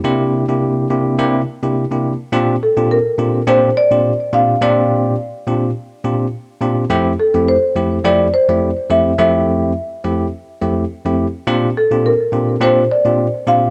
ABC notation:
X:1
M:4/4
L:1/16
Q:"Swing 16ths" 1/4=105
K:Bblyd
V:1 name="Marimba"
z16 | z2 A2 B4 c2 d4 f2 | d12 z4 | z2 A2 c4 d2 c4 e2 |
e12 z4 | z2 A2 B4 c2 d4 f2 |]
V:2 name="Tine electric piano"
[C,B,DEG]3 [C,B,DEG]3 [C,B,DEG]2 [C,B,DEG]2 z [C,B,DEG] z [C,B,DEG] z2 | [B,,CDFG]2 z [B,,CDFG] z2 [B,,CDFG]2 [B,,CDFG]2 z [B,,CDFG] z2 [B,,CDFG]2 | [B,,CDFG]4 z2 [B,,CDFG]2 z2 [B,,CDFG]2 z2 [B,,CDFG]2 | [F,,A,CEG]2 z [F,,A,CEG] z2 [F,,A,CEG]2 [F,,A,CEG]2 z [F,,A,CEG] z2 [F,,A,CEG]2 |
[F,,A,CEG]4 z2 [F,,A,CEG]2 z2 [F,,A,CEG]2 z [F,,A,CEG] z2 | [B,,CDFG]2 z [B,,CDFG] z2 [B,,CDFG]2 [B,,CDFG]2 z [B,,CDFG] z2 [B,,CDFG]2 |]